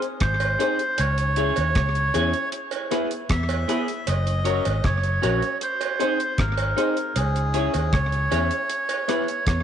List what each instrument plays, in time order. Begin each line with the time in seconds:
0.02 closed hi-hat
0.20 fingered electric bass G#1, melodica C5, kick, cross-stick, closed hi-hat
0.40 closed hi-hat, cowbell
0.59 upright piano C4 D#4 G#4 C5, clean electric guitar D#4 G#4 C5, closed hi-hat
0.79 upright piano G#4 C5, closed hi-hat
0.98 fingered electric bass C#2, melodica C#5, closed hi-hat, cowbell
1.18 closed hi-hat
1.36 upright piano C#4 E4 G#4 C#5, clean electric guitar E4 G#4 C#5, closed hi-hat
1.56 fingered electric bass D#2, closed hi-hat, cowbell
1.75 fingered electric bass C#2, kick, cross-stick, closed hi-hat
1.95 muted clean electric guitar stroke, closed hi-hat
2.14 fingered electric bass E2, upright piano C#4 E4 G#4 C#5, clean electric guitar E4 G#4 C#5, closed hi-hat, cowbell
2.33 closed hi-hat
2.52 closed hi-hat
2.71 closed hi-hat, cowbell
2.91 upright piano B3 E4 G#4 B4, clean electric guitar B3 E4 G#4, cross-stick, closed hi-hat
3.11 closed hi-hat
3.29 fingered electric bass E2, melodica E5, kick, cross-stick, closed hi-hat
3.49 closed hi-hat, cowbell
3.68 clean electric guitar B3 E4 G#4, upright piano B3 E4 G#4 B4, closed hi-hat
3.88 upright piano G#4 B4, closed hi-hat
4.07 fingered electric bass F#1, melodica D#5, closed hi-hat, cowbell
4.27 closed hi-hat
4.44 upright piano C#4 F#4 A#4 C#5, clean electric guitar F#4 A#4 C#5, closed hi-hat
4.65 fingered electric bass G#1, closed hi-hat, cowbell
4.84 fingered electric bass F#1, melodica C#5, kick, cross-stick, closed hi-hat
5.03 muted clean electric guitar stroke, closed hi-hat
5.22 fingered electric bass A#1, upright piano C#4 F#4 A#4 C#5, clean electric guitar F#4 A#4 C#5, closed hi-hat, cowbell
5.42 closed hi-hat
5.61 melodica C5, closed hi-hat
5.81 closed hi-hat, cowbell
5.99 upright piano C4 D#4 G#4 C5, clean electric guitar D#4 G#4 C5, closed hi-hat
6.20 closed hi-hat
6.38 fingered electric bass G#1, melodica A#4, kick, cross-stick, closed hi-hat
6.58 closed hi-hat, cowbell
6.77 upright piano C4 D#4 G#4 C5, clean electric guitar D#4 G#4 C5, closed hi-hat
6.97 upright piano G#4 C5, closed hi-hat
7.16 fingered electric bass C#2, melodica G#4, closed hi-hat, cowbell
7.36 closed hi-hat
7.54 upright piano C#4 E4 G#4 C#5, clean electric guitar E4 G#4 C#5, closed hi-hat
7.74 fingered electric bass D#2, closed hi-hat, cowbell
7.93 fingered electric bass C#2, melodica C#5, kick, cross-stick, closed hi-hat
8.12 muted clean electric guitar stroke, closed hi-hat
8.31 fingered electric bass E2, upright piano C#4 E4 G#4 C#5, clean electric guitar E4 G#4 C#5, closed hi-hat, cowbell
8.51 closed hi-hat
8.70 closed hi-hat
8.89 closed hi-hat, cowbell
9.08 upright piano B3 E4 G#4 B4, clean electric guitar B3 E4 G#4, cross-stick, closed hi-hat
9.28 closed hi-hat
9.47 fingered electric bass E2, melodica C#5, kick, cross-stick, closed hi-hat